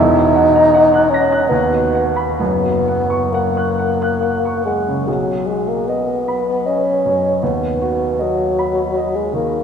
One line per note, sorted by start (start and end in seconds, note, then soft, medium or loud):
0.00 1.46 E1 medium
0.00 1.46 E2 medium
0.00 1.11 D#4 loud
0.16 0.46 F#4 soft
0.35 0.65 F#5 soft
0.56 0.85 A#5 medium
0.74 1.04 F#5 medium
0.94 1.23 F#6 soft
1.10 1.48 C#4 medium
1.14 1.44 A#6 medium
1.32 1.51 F#6 medium
1.49 2.37 D#2 medium
1.49 2.05 B3 medium
1.72 2.07 F#4 soft
1.95 2.31 F#5 soft
2.16 2.39 B5 soft
2.39 5.04 F#1 medium
2.39 5.04 F#2 medium
2.39 3.34 B3 medium
2.63 3.00 F#4 soft
2.88 3.24 F#5 soft
3.10 3.46 C#6 soft
3.32 4.65 A#3 medium
3.32 3.69 F#5 medium
3.57 3.91 F#6 soft
3.79 4.13 F#5 soft
4.02 4.35 F#6 soft
4.22 4.57 F#5 soft
4.45 4.79 C#6 soft
4.66 5.09 G#3 medium
4.66 5.00 F#5 soft
4.87 5.08 C#3 soft
5.07 7.37 B1 soft
5.07 5.48 F#3 soft
5.47 5.70 G#3 medium
5.47 6.11 F#4 soft
5.68 5.89 A#3 medium
5.87 6.68 B3 medium
5.87 6.50 D#5 soft
6.28 6.89 B5 soft
6.66 7.42 C#4 medium
6.66 7.26 D#5 soft
7.06 7.42 F#2 soft
7.43 9.63 D#2 soft
7.43 8.24 B3 medium
7.82 8.42 F#4 soft
8.19 9.17 F#3 medium
8.19 8.79 D#5 soft
8.59 9.18 B5 soft
8.97 9.55 D#5 soft
9.16 9.33 G#3 medium
9.33 9.63 D#3 soft
9.33 9.63 A#3 medium